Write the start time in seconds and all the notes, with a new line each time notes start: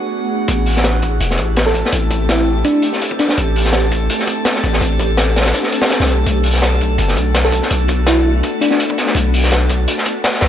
Already playing: A3 B3 D4 F#4 G#4 F#5
0.48 A1 A3 C4 E4 G4 A4 A5, kick, closed hi-hat
0.66 open hi-hat
0.77 snare
0.84 snare, closed hi-hat
1.02 kick, closed hi-hat
1.20 E1, closed hi-hat
1.31 snare
1.38 A1, kick, closed hi-hat
1.56 snare, closed hi-hat
1.66 A4, snare
1.74 kick, closed hi-hat
1.85 snare
1.93 A1, kick, closed hi-hat
2.11 kick, closed hi-hat
2.29 E4, snare, closed hi-hat
2.65 D4, kick, closed hi-hat
2.82 closed hi-hat
2.93 snare
3.02 closed hi-hat
3.11 kick
3.19 D4, snare, closed hi-hat
3.29 D4, snare
3.38 A1 D4, kick, closed hi-hat
3.56 open hi-hat
3.65 snare
3.73 snare, closed hi-hat
3.92 kick, closed hi-hat
4.10 closed hi-hat
4.19 snare
4.27 kick, closed hi-hat
4.45 snare, closed hi-hat
4.56 snare
4.64 A1, kick, closed hi-hat
4.73 snare
4.81 A1, kick, closed hi-hat
4.99 kick, closed hi-hat
5.17 snare, closed hi-hat
5.36 snare, closed hi-hat
5.41 snare, closed hi-hat
5.46 snare, closed hi-hat
5.54 kick, closed hi-hat
5.63 snare
5.72 closed hi-hat
5.82 snare
5.90 snare, closed hi-hat
6.00 C2, snare, closed hi-hat
6.08 B1, snare, closed hi-hat
6.26 B1 A3 B3 F#4, kick, closed hi-hat
6.43 open hi-hat
6.54 snare
6.62 snare, closed hi-hat
6.81 kick, closed hi-hat
6.98 F#1, closed hi-hat
7.08 snare
7.17 B1, kick, closed hi-hat
7.35 snare, closed hi-hat
7.45 A4, snare
7.52 kick, closed hi-hat
7.63 snare
7.71 B1, kick, closed hi-hat
7.88 kick, closed hi-hat
8.07 E4, snare, closed hi-hat
8.43 kick, closed hi-hat
8.61 D4, closed hi-hat
8.71 D4, snare
8.80 closed hi-hat
8.90 kick
8.98 snare, closed hi-hat
9.07 snare
9.15 B1, kick, closed hi-hat
9.34 open hi-hat
9.44 snare
9.52 snare, closed hi-hat
9.70 kick, closed hi-hat
9.88 closed hi-hat
9.98 snare
10.05 kick, closed hi-hat
10.24 snare, closed hi-hat
10.33 snare
10.41 B1, snare